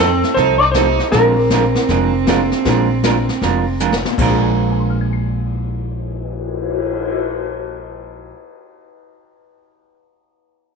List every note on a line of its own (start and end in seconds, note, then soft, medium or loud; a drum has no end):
0.00 0.21 F2 medium
0.00 0.33 C4 medium
0.00 0.10 D#4 medium
0.00 0.10 A4 medium
0.00 0.37 A4 medium
0.23 snare soft
0.34 0.97 C2 medium
0.34 0.58 F3 medium
0.34 0.58 C4 medium
0.34 0.59 D#4 medium
0.34 0.59 A4 medium
0.34 0.61 C5 medium
0.34 brush sweep medium
0.34 kick soft
0.34 snare soft
0.58 0.67 D#4 medium
0.58 0.63 D5 medium
0.72 0.96 A3 medium
0.72 0.96 C4 medium
0.72 1.09 D#4 medium
0.72 0.97 D#4 medium
0.72 0.97 F4 medium
0.72 0.97 G4 medium
0.72 1.11 C5 medium
0.72 kick soft
0.72 snare medium
0.72 hi-hat pedal medium
0.76 0.87 F3 medium
0.76 0.87 C4 medium
0.76 0.87 D#4 medium
0.76 0.87 A4 medium
0.99 snare soft
1.10 1.73 A#1 medium
1.10 1.35 F3 medium
1.10 1.35 G#3 medium
1.10 3.74 C4 medium
1.10 1.35 D4 medium
1.10 3.75 A#4 medium
1.10 brush sweep medium
1.10 kick soft
1.10 snare soft
1.15 1.35 F4 medium
1.15 1.35 A#4 medium
1.50 1.63 F3 medium
1.50 1.63 G#3 medium
1.50 1.64 D4 medium
1.50 1.64 F4 medium
1.50 1.64 A#4 medium
1.50 kick soft
1.50 snare medium
1.50 hi-hat pedal medium
1.75 snare soft
1.89 2.50 F1 medium
1.89 2.11 F3 medium
1.89 2.11 G#3 medium
1.89 2.12 D4 medium
1.89 2.12 F4 medium
1.89 2.12 A#4 medium
1.89 brush sweep medium
1.89 kick soft
1.89 snare soft
2.26 2.39 F3 medium
2.26 2.39 G#3 medium
2.26 2.63 A#3 medium
2.26 2.63 C4 medium
2.26 2.63 D4 medium
2.26 2.39 D4 medium
2.26 2.64 F4 medium
2.26 2.39 F4 medium
2.26 2.64 G#4 medium
2.26 2.39 A#4 medium
2.26 kick soft
2.26 snare medium
2.26 hi-hat pedal medium
2.52 snare soft
2.64 3.26 A#1 medium
2.64 2.88 F3 medium
2.64 2.88 G#3 medium
2.64 2.87 A#3 medium
2.64 2.87 C4 medium
2.64 2.87 D4 medium
2.64 2.88 D4 medium
2.64 2.87 F4 medium
2.64 2.87 G#4 medium
2.64 brush sweep soft
2.64 kick soft
2.64 snare soft
2.69 2.89 F4 medium
2.69 2.89 A#4 medium
3.02 3.15 F3 medium
3.02 3.15 G#3 medium
3.02 3.25 A#3 medium
3.02 3.25 C4 medium
3.02 3.25 D4 medium
3.02 3.15 D4 medium
3.02 3.25 F4 medium
3.02 3.16 F4 medium
3.02 3.26 A#4 medium
3.02 3.16 A#4 medium
3.02 kick soft
3.02 snare medium
3.02 hi-hat pedal medium
3.29 snare soft
3.42 4.02 F1 medium
3.42 3.64 F3 soft
3.42 3.64 G#3 medium
3.42 3.64 D4 medium
3.42 3.64 F4 medium
3.42 3.64 A#4 medium
3.42 brush sweep soft
3.42 kick soft
3.42 snare soft
3.80 3.92 F3 medium
3.80 3.92 G#3 medium
3.80 3.92 D4 medium
3.80 3.92 F4 medium
3.80 3.92 A#4 medium
3.80 hi-hat pedal medium
3.92 snare medium
4.05 8.20 A#2 medium
4.05 snare medium
4.11 8.26 A#3 medium
4.18 8.29 A#1 medium
4.18 8.34 A#2 medium
4.18 8.35 F3 medium
4.18 8.35 G#3 medium
4.18 8.33 C4 medium
4.18 8.36 D4 medium
4.18 kick medium
4.18 crash medium
4.22 8.39 D4 medium
4.22 8.37 F4 medium
4.22 8.37 A#4 medium
4.30 8.45 G#4 medium
4.43 cymbal swell soft
4.56 8.67 C5 soft
4.63 8.72 F5 soft
4.71 8.77 G#5 soft
4.80 8.81 C6 soft
4.90 8.86 F6 soft
5.01 8.91 G#6 soft
5.13 8.97 C7 soft